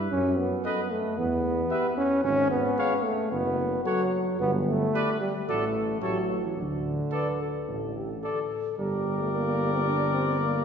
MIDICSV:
0, 0, Header, 1, 6, 480
1, 0, Start_track
1, 0, Key_signature, 2, "major"
1, 0, Tempo, 534283
1, 108, Time_signature, 4, 2, 24, 8
1, 3948, Tempo, 545951
1, 9444, End_track
2, 0, Start_track
2, 0, Title_t, "Trumpet"
2, 0, Program_c, 0, 56
2, 0, Note_on_c, 0, 76, 51
2, 102, Note_off_c, 0, 76, 0
2, 583, Note_on_c, 0, 75, 59
2, 726, Note_off_c, 0, 75, 0
2, 1533, Note_on_c, 0, 76, 56
2, 1677, Note_off_c, 0, 76, 0
2, 2498, Note_on_c, 0, 77, 63
2, 2642, Note_off_c, 0, 77, 0
2, 3468, Note_on_c, 0, 78, 55
2, 3612, Note_off_c, 0, 78, 0
2, 4439, Note_on_c, 0, 74, 58
2, 4579, Note_off_c, 0, 74, 0
2, 4909, Note_on_c, 0, 74, 56
2, 5050, Note_off_c, 0, 74, 0
2, 5379, Note_on_c, 0, 73, 49
2, 5520, Note_off_c, 0, 73, 0
2, 6351, Note_on_c, 0, 74, 49
2, 6492, Note_off_c, 0, 74, 0
2, 7324, Note_on_c, 0, 74, 42
2, 7465, Note_off_c, 0, 74, 0
2, 7803, Note_on_c, 0, 74, 56
2, 9444, Note_off_c, 0, 74, 0
2, 9444, End_track
3, 0, Start_track
3, 0, Title_t, "Trumpet"
3, 0, Program_c, 1, 56
3, 0, Note_on_c, 1, 71, 56
3, 101, Note_off_c, 1, 71, 0
3, 585, Note_on_c, 1, 71, 55
3, 729, Note_off_c, 1, 71, 0
3, 1537, Note_on_c, 1, 71, 55
3, 1680, Note_off_c, 1, 71, 0
3, 2500, Note_on_c, 1, 73, 63
3, 2644, Note_off_c, 1, 73, 0
3, 3470, Note_on_c, 1, 73, 59
3, 3614, Note_off_c, 1, 73, 0
3, 4427, Note_on_c, 1, 71, 60
3, 4568, Note_off_c, 1, 71, 0
3, 4911, Note_on_c, 1, 69, 54
3, 5051, Note_off_c, 1, 69, 0
3, 5380, Note_on_c, 1, 69, 50
3, 5521, Note_off_c, 1, 69, 0
3, 6337, Note_on_c, 1, 69, 48
3, 6478, Note_off_c, 1, 69, 0
3, 7322, Note_on_c, 1, 69, 42
3, 7463, Note_off_c, 1, 69, 0
3, 7811, Note_on_c, 1, 70, 62
3, 9444, Note_off_c, 1, 70, 0
3, 9444, End_track
4, 0, Start_track
4, 0, Title_t, "French horn"
4, 0, Program_c, 2, 60
4, 0, Note_on_c, 2, 64, 58
4, 106, Note_off_c, 2, 64, 0
4, 587, Note_on_c, 2, 69, 54
4, 731, Note_off_c, 2, 69, 0
4, 1533, Note_on_c, 2, 67, 62
4, 1677, Note_off_c, 2, 67, 0
4, 2499, Note_on_c, 2, 68, 57
4, 2643, Note_off_c, 2, 68, 0
4, 3466, Note_on_c, 2, 69, 64
4, 3610, Note_off_c, 2, 69, 0
4, 4430, Note_on_c, 2, 67, 58
4, 4571, Note_off_c, 2, 67, 0
4, 4911, Note_on_c, 2, 66, 55
4, 5052, Note_off_c, 2, 66, 0
4, 5378, Note_on_c, 2, 67, 50
4, 5518, Note_off_c, 2, 67, 0
4, 6350, Note_on_c, 2, 71, 65
4, 6605, Note_on_c, 2, 69, 54
4, 6618, Note_off_c, 2, 71, 0
4, 7076, Note_off_c, 2, 69, 0
4, 7081, Note_on_c, 2, 67, 50
4, 7190, Note_off_c, 2, 67, 0
4, 7322, Note_on_c, 2, 69, 58
4, 7796, Note_off_c, 2, 69, 0
4, 7813, Note_on_c, 2, 67, 61
4, 9444, Note_off_c, 2, 67, 0
4, 9444, End_track
5, 0, Start_track
5, 0, Title_t, "Trombone"
5, 0, Program_c, 3, 57
5, 103, Note_on_c, 3, 61, 103
5, 342, Note_on_c, 3, 59, 81
5, 355, Note_off_c, 3, 61, 0
5, 818, Note_on_c, 3, 57, 91
5, 831, Note_off_c, 3, 59, 0
5, 1060, Note_on_c, 3, 59, 93
5, 1073, Note_off_c, 3, 57, 0
5, 1769, Note_off_c, 3, 59, 0
5, 1774, Note_on_c, 3, 61, 100
5, 2006, Note_off_c, 3, 61, 0
5, 2012, Note_on_c, 3, 61, 108
5, 2250, Note_off_c, 3, 61, 0
5, 2255, Note_on_c, 3, 59, 98
5, 2732, Note_on_c, 3, 57, 88
5, 2746, Note_off_c, 3, 59, 0
5, 2976, Note_off_c, 3, 57, 0
5, 2980, Note_on_c, 3, 59, 101
5, 3451, Note_off_c, 3, 59, 0
5, 3457, Note_on_c, 3, 54, 92
5, 3936, Note_off_c, 3, 54, 0
5, 3953, Note_on_c, 3, 59, 100
5, 4059, Note_off_c, 3, 59, 0
5, 4190, Note_on_c, 3, 57, 97
5, 4657, Note_off_c, 3, 57, 0
5, 4664, Note_on_c, 3, 55, 78
5, 4771, Note_off_c, 3, 55, 0
5, 4904, Note_on_c, 3, 57, 89
5, 5369, Note_off_c, 3, 57, 0
5, 5375, Note_on_c, 3, 54, 78
5, 5757, Note_on_c, 3, 52, 61
5, 5770, Note_off_c, 3, 54, 0
5, 5868, Note_off_c, 3, 52, 0
5, 5873, Note_on_c, 3, 50, 84
5, 7297, Note_off_c, 3, 50, 0
5, 7810, Note_on_c, 3, 55, 73
5, 8182, Note_on_c, 3, 57, 63
5, 8195, Note_off_c, 3, 55, 0
5, 8283, Note_off_c, 3, 57, 0
5, 8288, Note_on_c, 3, 58, 65
5, 8635, Note_off_c, 3, 58, 0
5, 8646, Note_on_c, 3, 60, 68
5, 8698, Note_off_c, 3, 60, 0
5, 8767, Note_on_c, 3, 62, 75
5, 8990, Note_off_c, 3, 62, 0
5, 8996, Note_on_c, 3, 60, 74
5, 9226, Note_off_c, 3, 60, 0
5, 9233, Note_on_c, 3, 58, 68
5, 9444, Note_off_c, 3, 58, 0
5, 9444, End_track
6, 0, Start_track
6, 0, Title_t, "Tuba"
6, 0, Program_c, 4, 58
6, 0, Note_on_c, 4, 43, 59
6, 91, Note_off_c, 4, 43, 0
6, 109, Note_on_c, 4, 42, 70
6, 507, Note_off_c, 4, 42, 0
6, 1060, Note_on_c, 4, 40, 72
6, 1458, Note_off_c, 4, 40, 0
6, 2011, Note_on_c, 4, 32, 77
6, 2415, Note_off_c, 4, 32, 0
6, 2975, Note_on_c, 4, 30, 76
6, 3381, Note_off_c, 4, 30, 0
6, 3948, Note_on_c, 4, 31, 81
6, 4346, Note_off_c, 4, 31, 0
6, 4904, Note_on_c, 4, 33, 68
6, 5302, Note_off_c, 4, 33, 0
6, 5385, Note_on_c, 4, 33, 63
6, 5787, Note_off_c, 4, 33, 0
6, 5870, Note_on_c, 4, 38, 63
6, 6274, Note_off_c, 4, 38, 0
6, 6838, Note_on_c, 4, 33, 58
6, 7241, Note_off_c, 4, 33, 0
6, 7808, Note_on_c, 4, 31, 59
6, 9444, Note_off_c, 4, 31, 0
6, 9444, End_track
0, 0, End_of_file